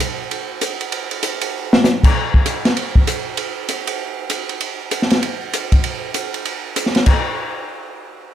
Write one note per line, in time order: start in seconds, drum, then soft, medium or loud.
0.00 hi-hat pedal medium
0.00 ride medium
0.31 ride medium
0.61 hi-hat pedal medium
0.61 ride medium
0.81 ride soft
0.92 ride medium
1.11 ride soft
1.23 hi-hat pedal medium
1.23 ride medium
1.41 ride medium
1.73 snare medium
1.84 snare medium
1.84 hi-hat pedal medium
2.04 kick medium
2.04 crash medium
2.34 kick medium
2.46 hi-hat pedal soft
2.46 ride medium
2.65 snare soft
2.65 ride soft
2.77 ride medium
2.95 kick medium
3.07 hi-hat pedal medium
3.07 ride medium
3.37 ride medium
3.69 hi-hat pedal soft
3.69 ride medium
3.87 ride medium
4.30 hi-hat pedal medium
4.30 ride medium
4.49 ride soft
4.61 ride medium
4.91 hi-hat pedal soft
4.91 ride medium
5.02 snare soft
5.10 snare soft
5.10 ride soft
5.23 ride medium
5.53 hi-hat pedal medium
5.53 ride medium
5.72 kick medium
5.72 ride soft
5.84 ride medium
6.14 hi-hat pedal soft
6.14 ride medium
6.34 ride soft
6.45 ride medium
6.76 hi-hat pedal medium
6.76 ride medium
6.86 snare soft
6.95 snare soft
6.95 ride soft
7.06 kick soft
7.06 crash medium